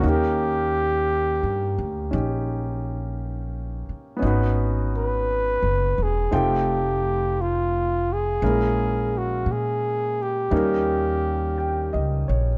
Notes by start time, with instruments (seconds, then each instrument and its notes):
Already playing: grand piano A#3, flugelhorn F#4
0.00 upright bass D#2, grand piano C#4 D#4
0.06 grand piano G4 A#4, flugelhorn G4
1.43 upright bass G2
1.78 upright bass D2
2.11 upright bass A#1, grand piano C#4 D#4 G4
3.89 muted upright bass stroke
4.17 grand piano B3 C#4
4.22 upright bass G#1, grand piano D#4 F#4
4.27 grand piano B4
4.97 flugelhorn B4
5.63 upright bass F#1
5.98 upright bass E1
6.03 flugelhorn G#4
6.31 upright bass F1, grand piano A3 C4 D#4 F4 G5
6.37 flugelhorn G4
7.42 flugelhorn F4
8.13 flugelhorn G#4
8.42 upright bass A#1, grand piano G#3 A#3 C#4 E4 A#4
9.18 flugelhorn F#4
9.46 upright bass A#2
9.52 flugelhorn G#4
10.22 flugelhorn G4
10.51 upright bass D#2, grand piano G3 A#3 C#4 D#4 A#4
11.58 grand piano G5
11.93 upright bass C#2, grand piano D#5
12.28 upright bass A#1, grand piano C#5